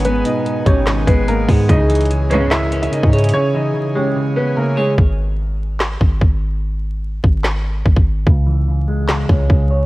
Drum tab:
HH |x---x---x---x---x---x---x---o---|x---xxxxx---x---x---x-x-x---xxxx|--------------------------------|--------------------------------|
CP |----------------x---------------|----------------x---------------|--------------------------------|----------------x---------------|
SD |----------------o---------------|----------------o---------------|--------------------------------|----------------o---------------|
BD |------------o-------o-------o---|o-------------------------o-----|--------------------------------|o-------------------o---o-------|

HH |--------------------------------|--------------------------------|
CP |----------------x---------------|----------------x---------------|
SD |----------------o---------------|----------------o---------------|
BD |------------o-----------o-o-----|o-------------------o---o-------|